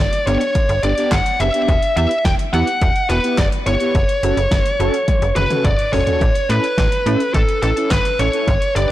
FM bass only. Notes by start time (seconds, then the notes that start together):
0.27 G1
0.69 G1
0.83 G1
1.12 G1
1.40 F#1
1.68 E1
1.97 E2
2.25 E1
2.53 E2
2.82 E1
3.10 E1
3.38 F#1
3.67 G1
3.95 F#1
4.23 F#1
4.37 F#1
4.51 F#1
4.80 F#1
5.22 F#1
5.36 F#1
5.65 F#1
5.93 G1
6.21 A1
6.50 A2
6.78 A1
7.06 A2
7.35 A1
7.63 A1
7.91 G1
8.19 A1
8.48 G1
8.76 G1